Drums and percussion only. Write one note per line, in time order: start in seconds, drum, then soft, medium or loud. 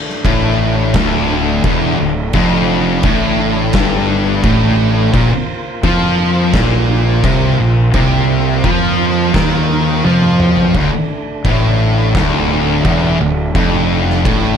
0.09 snare soft
0.25 kick loud
0.25 crash medium
0.94 kick loud
0.94 snare loud
0.94 crash medium
1.64 kick loud
1.64 crash medium
2.33 kick loud
2.33 crash medium
3.03 kick loud
3.03 crash medium
3.73 kick loud
3.73 snare loud
3.73 crash medium
4.44 kick loud
4.44 crash medium
5.14 kick loud
5.14 crash medium
5.83 kick loud
5.83 crash medium
6.53 kick loud
6.53 snare loud
6.53 crash medium
7.24 kick loud
7.24 crash medium
7.94 kick loud
7.94 crash medium
8.64 kick loud
8.64 crash medium
9.34 kick loud
9.34 snare loud
9.34 crash medium
10.04 high tom medium
10.22 mid tom medium
10.40 mid tom loud
10.57 floor tom medium
10.75 kick loud
10.75 crash medium
11.45 kick loud
11.45 crash medium
12.15 kick loud
12.15 snare loud
12.15 crash medium
12.85 kick loud
12.85 crash medium
13.55 kick loud
13.55 crash medium
14.10 snare soft
14.25 kick loud
14.25 crash medium